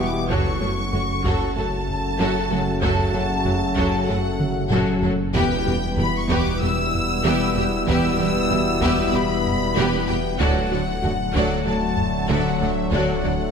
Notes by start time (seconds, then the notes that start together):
Already playing: E1 B2 E3 G3 B3 E4 G4 B4
0.00 G4
0.08 D6
0.28 F#1 F#2 C#3 F#3 A3 C#4 F#4 A4 C#6, taiko
0.61 F#1 F#2 F#3 A3 F#4 A4
0.93 F#1 F#2 F#3 A3 F#4, taiko low
1.24 F#1 F#2 F#3 F#4 A4, taiko
1.55 F#1 F#2 F#3 A3 F#4 A4 A5
1.88 taiko low
2.19 F#1 F#2 F#3 F#4 A4
2.51 F#1 F#2 F#3 A3 F#4 A4
2.81 F#1 F#2 F#3 F#4 A4 A5, taiko
3.13 F#1 F#2 F#3 A3 F#4 A4
3.45 F#1 F#2 F#3 A3 F#4, taiko low
3.77 F#1 F#2 F#3 F#4 A4, taiko
4.08 F#1 F#2 F#3 A3 F#4 A4 F#5
4.40 taiko mid
4.71 F#1 F#2 F#3 F#4 A4, taiko low-mid
5.03 F#1 F#2 F#3 A3 F#4 A4, taiko low
5.33 E1 E2 B2 E3 G3 B3 E4 G4 B4 G5, taiko
5.66 E1 E2 G3 B3 G4 B4
5.97 E1 E2 G3 B3 E4 G4 B5, taiko low
6.19 C#6
6.29 E1 E2 E3 B3 G4 B4, taiko
6.40 D6
6.61 E1 E2 G3 B3 G4 B4 E6
6.93 taiko low
7.24 E1 E2 E3 B3 G4 B4
7.56 E1 E2 G3 B3 G4 B4
7.87 E1 E2 E3 B3 G4 B4 E6, taiko
8.19 E1 E2 G3 B3 G4 B4
8.50 E1 E2 G3 B3 E4 G4, taiko low
8.81 E1 E2 E3 B3 G4 B4, taiko
9.13 E1 E2 G3 B3 G4 B4 B5
9.46 taiko low
9.76 E1 E2 E3 B3 G4 B4
10.08 E1 E2 G3 B3 G4 B4 G5
10.38 D1 D2 D3 F#3 A3 F#4 A4 D5 F#5, taiko
10.71 D2 F#3 F#4 A4 D5
11.02 D2 F#3 F#4 A4, taiko low
11.34 D2 D3 F#3 F#4 A4 D5, taiko
11.65 D2 F#3 F#4 A4 D5 A5
11.97 taiko low
12.28 D2 D3 F#3 F#4 A4 D5 E5
12.49 F#5
12.60 D2 F#3 F#4 A4 D5
12.71 E5
12.92 D2 D3 F#3 F#4 A4 D5 F#5, taiko, reverse cymbal
13.23 D2 F#3 F#4 A4 D5